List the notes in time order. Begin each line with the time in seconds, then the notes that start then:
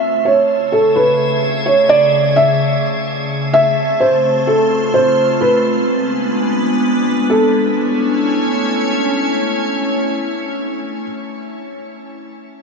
Already playing: C#3 A3 E5
0.20 G#4 E5
0.25 C#5
0.72 A4
0.96 B4
1.66 C#5
1.89 D5
2.36 E5
3.54 A3 E5
3.59 C4
4.00 C5
4.11 F4
4.47 A4
4.94 C5
5.41 G#3 B4
5.51 B3
5.79 D4
7.30 A3 A4
7.39 C#4
7.46 E4
7.52 G#5
7.59 C#5